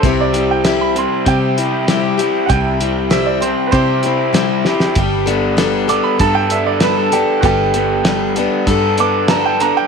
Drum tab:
HH |x-x-x-x-x-x-x-x-|x-x-x-x-x-x-x---|x-x-x-x-x-x-x-x-|x-x-x-x-x-x-x-x-|
SD |----o-------o---|----o-------o-oo|----o-------o---|----o-------o---|
BD |o-------o-------|o-------o-------|o-------o-------|o-------o-------|